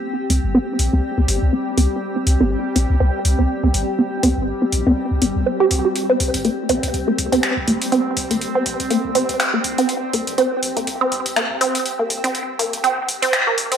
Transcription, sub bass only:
X:1
M:4/4
L:1/16
Q:"Swing 16ths" 1/4=122
K:Dblyd
V:1 name="Sub bass" clef=bass
z2 C,, G,,, z2 B,,, C,, z C,, G,,, C,, z2 C,, z | z2 C,, G,,, z2 B,,, C,, C,, z C,, C,, z C,, G,,, z | z2 C,, G,,, z2 B,,, C,, z C,, G,,, C,, z2 C,, z | z2 C,, G,,, z2 B,,, C,, C,, z C,, C,, z C,, G,,, z |
z2 C,, G,,, z2 B,,, C,, z C,, G,,, C,, z2 C,, z | z2 C,, G,,, z2 B,,, C,, C,, z C,, C,, z C,, G,,, z | z2 C,, G,,, z2 B,,, C,, z C,, G,,, C,, z2 C,, z |]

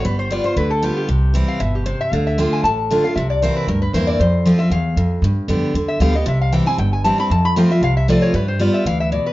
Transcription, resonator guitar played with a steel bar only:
X:1
M:4/4
L:1/8
Q:"Swing" 1/4=232
K:C
V:1 name="Resonator guitar played with a steel bar"
B c d c B A G G- | G2 z f e G c e | f e g _a =a3 f | e d c B _B =B c d |
c3 e f4 | z4 z e f _e | e f g _a g a =a b | a b g e f e d _d |
B c d e f e d B |]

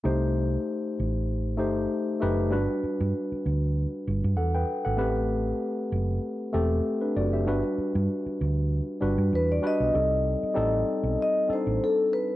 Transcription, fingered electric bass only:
X:1
M:4/4
L:1/16
Q:"Swing 16ths" 1/4=97
K:Clyd
V:1 name="Fingered electric bass" clef=bass
C,,4 z2 A,,,4 G,,,2 z2 F,,,2 | G,,, z2 G,, z2 D,,3 z G,,, G,, E,,2 z _A,,, | A,,,4 z2 F,,,2 z2 E,,,2 z2 F,,,2 | G,,, z2 G,, z2 D,,3 z G,,, G,, E,,2 z B,,, |
C,,3 z A,,,2 z B,,, z3 A,,, z4 |]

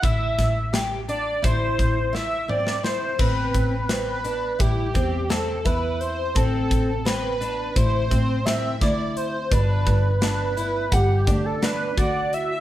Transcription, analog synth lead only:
X:1
M:9/8
L:1/16
Q:3/8=57
K:Ador
V:1 name="Analog synth lead"
e4 z2 d2 c4 e2 d2 c2 | B4 B4 G4 A2 B2 c2 | A4 B4 c4 e2 d2 c2 | B4 B4 G3 A B2 d2 e e |]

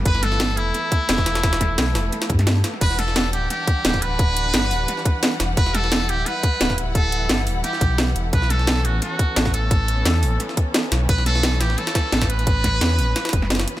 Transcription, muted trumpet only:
X:1
M:4/4
L:1/8
Q:"Swing 16ths" 1/4=174
K:Edor
V:1 name="Muted trumpet"
B A2 E4- E- | E6 z2 | B A2 G G3 B- | B6- B z |
B A2 G B3 z | A3 z G3 z | B A2 F F3 A- | A4- A z3 |
B A2 G A3 B- | B6- B z |]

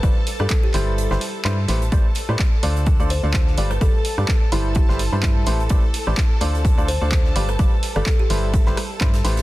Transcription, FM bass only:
X:1
M:4/4
L:1/16
Q:"Swing 16ths" 1/4=127
K:C
V:1 name="FM bass" clef=bass
G,,, z2 G,, z2 G,,,3 G,,, z2 G,,2 A,,,2 | A,,, z2 A,, z2 D,,3 D,,2 D,,3 G,,,2 | G,,, z2 G,, z2 G,,,3 G,,,2 G,,3 A,,,2 | A,,, z2 A,,, z2 D,,3 D,,2 D,,3 G,,,2 |
G,,, z2 G,,, z2 G,,,3 G,,, z2 G,,2 A,,,2 |]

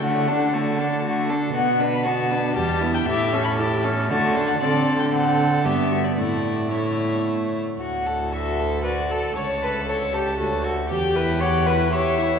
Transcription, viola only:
X:1
M:3/4
L:1/8
Q:1/4=117
K:D
V:1 name="Viola"
A, D A, D A, D | B, D B, D G, B, | E C E C A, D | =C2 C2 B,2 |
A,2 A,3 z | z2 A2 B A | c B A G F A | G B c B c2 |]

